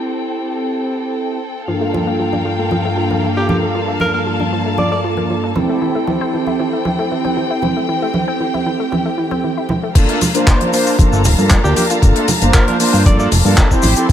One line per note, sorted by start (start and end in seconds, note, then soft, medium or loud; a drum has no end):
0.00 1.38 C4 medium
0.00 1.64 C4 medium
0.00 1.39 E4 medium
0.00 1.39 G4 medium
0.00 1.39 A4 medium
0.00 7.59 A4 medium
0.00 1.64 G5 medium
1.67 5.52 G2 medium
1.67 1.73 F3 medium
1.67 5.52 A#3 medium
1.67 5.53 D4 medium
1.67 5.53 F4 medium
1.67 5.53 A4 medium
1.67 5.52 F5 medium
1.67 3.73 G5 medium
1.81 1.86 A3 medium
1.94 2.02 F3 medium
1.94 high conga medium
2.07 2.12 A#3 medium
2.19 2.23 F3 medium
2.33 2.36 D4 medium
2.33 high conga medium
2.45 2.49 F3 medium
2.59 2.64 A3 medium
2.71 2.77 F3 medium
2.71 high conga medium
2.85 2.90 A3 loud
2.97 3.05 F3 medium
3.10 3.16 A#3 medium
3.10 high conga medium
3.23 3.26 F3 medium
3.37 3.40 D4 medium
3.37 3.45 G4 medium
3.49 3.52 F3 loud
3.49 3.58 G4 medium
3.49 high conga medium
3.49 low conga medium
3.63 3.67 A3 medium
3.75 3.80 F3 loud
3.75 5.54 A5 medium
3.88 3.93 A3 medium
4.00 4.09 F3 medium
4.00 4.09 A#4 medium
4.00 high conga medium
4.14 4.19 A#3 medium
4.14 4.22 A#4 medium
4.26 4.30 F3 medium
4.40 4.43 D4 medium
4.40 high conga medium
4.53 4.56 F3 medium
4.66 4.71 A3 medium
4.78 4.84 F3 medium
4.78 4.87 D5 medium
4.78 high conga medium
4.92 4.97 A3 medium
4.92 5.00 D5 medium
5.04 5.12 F3 loud
5.17 5.22 A#3 medium
5.17 high conga medium
5.30 5.33 F3 medium
5.44 5.46 D4 medium
5.55 5.59 E3 loud
5.55 9.66 C4 medium
5.55 9.91 C4 medium
5.55 9.67 E4 medium
5.55 9.67 G4 medium
5.55 9.67 A4 medium
5.55 9.91 G5 medium
5.55 high conga medium
5.55 low conga medium
5.69 5.74 A3 medium
5.82 5.87 E3 medium
5.95 6.00 A3 medium
6.07 6.16 E3 medium
6.07 high conga medium
6.21 6.26 C4 loud
6.34 6.37 E3 medium
6.47 6.50 E4 medium
6.47 high conga medium
6.60 6.63 E3 medium
6.73 6.78 A3 medium
6.85 6.91 E3 loud
6.85 high conga medium
6.99 7.04 A3 medium
7.11 7.19 E3 loud
7.25 7.29 C4 medium
7.25 high conga medium
7.37 7.40 E3 medium
7.51 7.53 E4 medium
7.62 7.66 E3 loud
7.62 9.93 G4 medium
7.62 high conga medium
7.62 low conga medium
7.77 7.81 A3 medium
7.89 7.94 E3 loud
8.02 8.07 A3 medium
8.14 8.22 E3 loud
8.14 high conga medium
8.28 8.33 C4 loud
8.40 8.44 E3 medium
8.54 8.57 E4 medium
8.54 high conga medium
8.66 8.69 E3 medium
8.80 8.85 A3 medium
8.92 8.97 E3 medium
8.92 high conga medium
9.05 9.10 A3 medium
9.18 9.26 E3 loud
9.31 9.36 C4 loud
9.31 high conga medium
9.44 9.47 E3 medium
9.57 9.60 E4 medium
9.69 9.73 E3 loud
9.69 high conga medium
9.69 low conga medium
9.83 9.88 A3 medium
9.95 10.06 G1 loud
9.95 9.99 F3 medium
9.95 10.20 A#3 loud
9.95 10.20 D4 medium
9.95 10.20 F4 medium
9.95 10.20 A4 loud
9.95 13.80 F5 medium
9.95 13.80 A5 medium
9.95 13.80 A#5 medium
9.95 kick loud
9.95 closed hi-hat medium
9.95 crash loud
9.95 shaker medium
10.09 10.16 A3 loud
10.09 closed hi-hat medium
10.21 10.27 F3 loud
10.21 open hi-hat loud
10.21 high conga medium
10.21 low conga medium
10.21 shaker medium
10.34 10.70 A#3 loud
10.34 10.38 A#3 medium
10.34 10.70 D4 medium
10.34 10.70 F4 medium
10.34 10.70 C5 loud
10.34 closed hi-hat medium
10.34 shaker soft
10.47 10.50 F3 loud
10.47 kick loud
10.47 clap loud
10.47 closed hi-hat medium
10.47 shaker medium
10.61 10.66 D4 medium
10.61 closed hi-hat medium
10.61 high conga medium
10.72 10.78 F3 loud
10.72 10.96 A#3 loud
10.72 10.96 D4 medium
10.72 10.96 F4 medium
10.72 10.96 C5 loud
10.72 open hi-hat loud
10.72 shaker medium
10.87 10.90 F4 medium
10.87 shaker medium
10.98 11.10 G1 soft
10.98 11.02 F3 medium
10.98 11.22 A#3 loud
10.98 11.22 D4 medium
10.98 11.22 F4 medium
10.98 11.22 A4 loud
10.98 kick loud
10.98 closed hi-hat medium
10.98 high conga medium
10.98 shaker medium
11.12 11.26 G1 medium
11.12 11.20 A3 loud
11.12 shaker soft
11.25 11.36 D1 loud
11.25 11.30 F3 loud
11.25 open hi-hat loud
11.25 low conga loud
11.25 shaker medium
11.38 11.59 G2 medium
11.38 11.61 A#3 loud
11.38 11.41 A#3 medium
11.38 11.61 D4 medium
11.38 11.61 F4 medium
11.38 11.61 A4 loud
11.38 high conga medium
11.38 shaker medium
11.50 11.54 F3 loud
11.50 kick loud
11.50 clap loud
11.50 closed hi-hat loud
11.50 shaker medium
11.64 11.74 D2 loud
11.64 11.87 A#3 medium
11.64 11.87 D4 medium
11.64 11.69 D4 medium
11.64 11.87 F4 medium
11.64 11.72 G4 medium
11.64 11.87 A#4 loud
11.64 shaker soft
11.76 11.82 F3 loud
11.76 11.85 G4 medium
11.76 open hi-hat loud
11.76 high conga medium
11.76 shaker medium
11.90 11.99 A#3 medium
11.90 11.99 D4 medium
11.90 11.93 F4 medium
11.90 12.00 F4 medium
11.90 12.00 A4 loud
11.90 closed hi-hat medium
11.90 shaker medium
12.02 12.13 G1 loud
12.02 12.06 F3 medium
12.02 12.27 A#3 medium
12.02 12.27 D4 medium
12.02 12.27 F4 medium
12.02 12.27 A4 loud
12.02 kick loud
12.02 closed hi-hat medium
12.02 shaker medium
12.16 12.23 A3 loud
12.16 closed hi-hat medium
12.28 12.34 F3 loud
12.28 open hi-hat loud
12.28 high conga medium
12.28 low conga loud
12.28 shaker medium
12.42 12.52 G1 medium
12.42 12.77 A#3 loud
12.42 12.45 A#3 medium
12.42 12.77 D4 loud
12.42 12.77 F4 medium
12.42 12.78 C5 loud
12.42 closed hi-hat medium
12.42 shaker medium
12.54 12.57 F3 loud
12.54 12.63 A#4 medium
12.54 kick loud
12.54 clap loud
12.54 closed hi-hat medium
12.54 shaker medium
12.67 12.73 D4 medium
12.67 12.75 A#4 medium
12.67 closed hi-hat soft
12.67 high conga medium
12.80 12.85 F3 loud
12.80 13.03 A#3 loud
12.80 13.03 D4 medium
12.80 13.03 F4 medium
12.80 13.03 C5 loud
12.80 open hi-hat loud
12.80 shaker medium
12.93 13.28 G2 loud
12.93 12.96 F4 medium
12.93 shaker medium
13.05 13.09 F3 medium
13.05 13.29 A#3 loud
13.05 13.29 D4 medium
13.05 13.29 F4 medium
13.05 13.29 A4 loud
13.05 13.15 D5 medium
13.05 kick loud
13.05 closed hi-hat medium
13.05 high conga medium
13.05 shaker medium
13.19 13.27 A3 loud
13.19 13.27 D5 medium
13.19 shaker soft
13.32 13.42 F1 medium
13.32 13.37 F3 loud
13.32 open hi-hat loud
13.32 low conga loud
13.32 shaker medium
13.45 13.55 G2 loud
13.45 13.68 A#3 medium
13.45 13.48 A#3 medium
13.45 13.68 D4 medium
13.45 13.68 F4 medium
13.45 13.68 A4 loud
13.45 high conga medium
13.45 shaker medium
13.57 13.61 F3 loud
13.57 kick loud
13.57 clap loud
13.57 closed hi-hat loud
13.57 shaker medium
13.71 13.94 C4 medium
13.71 13.76 D4 medium
13.71 13.94 E4 medium
13.71 13.94 G4 medium
13.71 13.94 C5 loud
13.71 kick medium
13.71 shaker medium
13.82 13.94 A1 medium
13.82 13.89 E3 loud
13.82 14.12 G5 medium
13.82 14.12 A5 medium
13.82 14.12 C6 medium
13.82 open hi-hat loud
13.82 high conga loud
13.82 shaker medium
13.96 14.06 C4 medium
13.96 14.06 E4 medium
13.96 14.00 G4 medium
13.96 14.06 G4 medium
13.96 14.07 A4 loud
13.96 closed hi-hat medium
13.96 shaker medium
14.09 14.12 A1 loud
14.09 14.12 E3 medium
14.09 14.12 C4 medium
14.09 kick loud